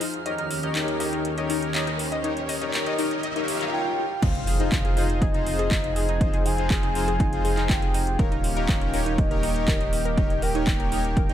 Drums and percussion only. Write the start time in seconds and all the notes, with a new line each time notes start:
0.01 open hi-hat
0.14 closed hi-hat
0.26 closed hi-hat
0.38 closed hi-hat
0.51 open hi-hat
0.63 closed hi-hat
0.75 clap, closed hi-hat
0.88 closed hi-hat
1.00 open hi-hat
1.13 closed hi-hat
1.25 closed hi-hat
1.38 closed hi-hat
1.50 open hi-hat
1.62 closed hi-hat
1.75 clap, closed hi-hat
1.87 closed hi-hat
1.99 open hi-hat
2.12 closed hi-hat
2.24 closed hi-hat
2.37 closed hi-hat
2.49 open hi-hat
2.62 closed hi-hat
2.74 clap, closed hi-hat
2.86 closed hi-hat
2.98 open hi-hat
3.11 closed hi-hat
3.23 closed hi-hat
3.36 closed hi-hat
3.48 open hi-hat
3.61 clap, closed hi-hat
4.22 kick, closed hi-hat, crash
4.35 closed hi-hat
4.47 open hi-hat
4.60 closed hi-hat
4.72 kick, clap, closed hi-hat
4.85 closed hi-hat
4.97 open hi-hat
5.10 closed hi-hat
5.22 kick, closed hi-hat
5.34 closed hi-hat
5.46 open hi-hat
5.59 closed hi-hat
5.71 kick, clap, closed hi-hat
5.84 closed hi-hat
5.96 open hi-hat
6.09 closed hi-hat
6.21 kick, closed hi-hat
6.34 closed hi-hat
6.46 open hi-hat
6.58 closed hi-hat
6.70 kick, clap, closed hi-hat
6.83 closed hi-hat
6.95 open hi-hat
7.08 closed hi-hat
7.20 kick, closed hi-hat
7.33 closed hi-hat
7.45 open hi-hat
7.57 clap, closed hi-hat
7.70 kick, clap, closed hi-hat
7.82 closed hi-hat
7.94 open hi-hat
8.07 closed hi-hat
8.19 kick, closed hi-hat
8.32 closed hi-hat
8.44 open hi-hat
8.57 closed hi-hat
8.69 kick, clap, closed hi-hat
8.81 closed hi-hat
8.94 open hi-hat
9.06 closed hi-hat
9.18 kick, closed hi-hat
9.31 closed hi-hat
9.43 open hi-hat
9.56 closed hi-hat
9.68 kick, clap, closed hi-hat
9.81 closed hi-hat
9.93 open hi-hat
10.05 closed hi-hat
10.18 kick, closed hi-hat
10.30 closed hi-hat
10.42 open hi-hat
10.55 closed hi-hat
10.67 kick, clap, closed hi-hat
10.80 closed hi-hat
10.92 open hi-hat
11.05 closed hi-hat
11.17 kick, closed hi-hat
11.29 closed hi-hat